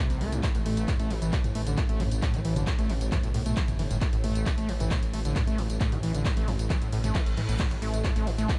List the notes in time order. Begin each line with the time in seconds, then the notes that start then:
Already playing: A2
0.00 C3
0.10 C2, closed hi-hat, tambourine
0.21 C2 A3, open hi-hat
0.32 C2 A2, closed hi-hat, tambourine
0.43 A2, kick, clap, closed hi-hat, ride, tambourine
0.55 A1 A2, closed hi-hat, ride, tambourine
0.66 A1 A3, open hi-hat, ride
0.77 A1, closed hi-hat, ride, tambourine
0.88 A2, kick, clap, closed hi-hat, mid tom, ride, tambourine
1.00 A1 A3, closed hi-hat, ride, tambourine
1.10 A1 E3, open hi-hat, ride
1.22 A1 E3, closed hi-hat, ride, tambourine
1.33 B2, kick, clap, closed hi-hat, ride, tambourine
1.44 A1, closed hi-hat, mid tom, ride, tambourine
1.55 A1 A3, open hi-hat, ride
1.67 A1 D3, closed hi-hat, ride, tambourine
1.78 A2, kick, clap, closed hi-hat, ride, tambourine
1.89 A1 A3, closed hi-hat, ride, tambourine
2.00 A1 E3, mid tom, open hi-hat, ride
2.11 A1, closed hi-hat, ride, tambourine
2.22 A2, kick, clap, closed hi-hat, ride, tambourine
2.34 A1 E3, closed hi-hat, ride, tambourine
2.45 A1 E3, open hi-hat, ride
2.56 A1 D3, closed hi-hat, mid tom, ride, tambourine
2.67 A2, kick, clap, closed hi-hat, ride, tambourine
2.79 A1 A3, closed hi-hat, ride, tambourine
2.90 A1 E3, open hi-hat, ride
3.01 A1, closed hi-hat, ride, tambourine
3.12 E3, kick, clap, closed hi-hat, mid tom, ride, tambourine
3.23 B1 A2, closed hi-hat, ride, tambourine
3.34 B1 A2, open hi-hat, ride
3.46 B1 A3, closed hi-hat, ride, tambourine
3.57 E3, kick, clap, closed hi-hat, ride, tambourine
3.68 G1, closed hi-hat, mid tom, ride, tambourine
3.79 G1 E3, open hi-hat, ride
3.91 G1 A2, closed hi-hat, ride, tambourine
4.01 A2, kick, clap, closed hi-hat, ride, tambourine
4.13 A1 A2, closed hi-hat, ride, tambourine
4.24 A1 A3, mid tom, open hi-hat, ride
4.35 A1, closed hi-hat, ride, tambourine
4.46 A2, kick, clap, closed hi-hat, ride, tambourine
4.58 A1 A3, closed hi-hat, ride, tambourine
4.69 A1 E3, open hi-hat, ride
4.80 A1 E3, closed hi-hat, mid tom, ride, tambourine
4.91 B2, kick, clap, closed hi-hat, ride, tambourine
5.03 A1, closed hi-hat, ride, tambourine
5.13 A1 A3, open hi-hat, ride
5.25 A1 D3, closed hi-hat, ride, tambourine
5.36 A2, kick, clap, closed hi-hat, mid tom, ride, tambourine
5.47 A1 A3, closed hi-hat, ride, tambourine
5.58 A1 E3, open hi-hat, ride
5.70 A1, closed hi-hat, ride, tambourine
5.81 A2, kick, clap, closed hi-hat, ride, tambourine
5.92 A1 E3, closed hi-hat, mid tom, ride, tambourine
6.03 A1 E3, open hi-hat, ride
6.14 A1 D3, closed hi-hat, ride, tambourine
6.25 A2, kick, clap, closed hi-hat, ride, tambourine
6.37 A1 A3, closed hi-hat, ride, tambourine
6.48 A1 E3, mid tom, open hi-hat, ride
6.59 A1, closed hi-hat, ride, tambourine
6.70 E3, kick, clap, closed hi-hat, ride, tambourine, reverse cymbal
6.82 A1 A2, closed hi-hat, ride, tambourine
6.92 A1 A2, open hi-hat, ride
7.04 A1 A3, closed hi-hat, mid tom, ride, tambourine
7.15 E3, kick, clap, closed hi-hat, ride, tambourine
7.26 A1, closed hi-hat, ride, tambourine
7.37 A2 E3, open hi-hat, ride
7.49 A1 A2, closed hi-hat, ride, tambourine
7.59 A2, kick, clap, closed hi-hat, ride, tambourine, crash
7.71 A1 A2, closed hi-hat, ride, tambourine
7.82 A1 A3, open hi-hat, ride
7.93 A1, closed hi-hat, ride, tambourine
8.04 A2, kick, clap, closed hi-hat, mid tom, ride, tambourine
8.16 A1 A3, closed hi-hat, ride, tambourine
8.27 A1 E3, open hi-hat, ride
8.38 A1 A3, closed hi-hat, ride, tambourine
8.49 B2, kick, clap, closed hi-hat, ride, tambourine